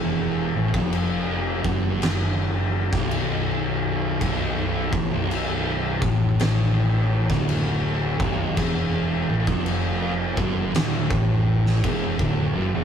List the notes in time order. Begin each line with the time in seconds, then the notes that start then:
Already playing: E1 E2
0.56 A1 A2
0.74 F1 F2, kick
0.93 crash
1.65 F#1 F#2, kick
2.02 snare, crash
2.93 B0 B1, kick, snare
3.11 crash
4.21 B0 B1, kick, crash
4.93 A1 A2, kick
5.10 B0 B1
5.31 crash
6.02 A1 A2, kick
6.40 snare, crash
7.29 D1 D2, kick, snare
7.49 crash
8.19 B0 B1, kick
8.57 E1 E2, kick, crash
9.29 A1 A2
9.47 F1 F2, kick
9.66 crash
10.37 F#1 F#2, kick
10.75 D1 D2, snare, crash
11.10 A1 A2, kick
11.66 snare
11.84 E1 E2, kick, crash
12.19 D1 D2, kick
12.55 F#1 F#2
12.74 E1 E2